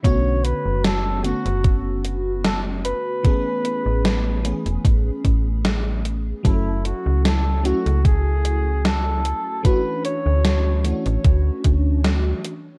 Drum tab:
HH |x-x-x-xxx-x-x-x-|x-x-x-xxx-x-x-x-|x-x-x-xxx-x-x-x-|x-x-x-xxx-x-x-x-|
SD |----o-------o---|----o-------o---|----o-------o---|----o-------o---|
BD |o-------o-------|o-------o-o-----|o-------o-------|o-------o-o-----|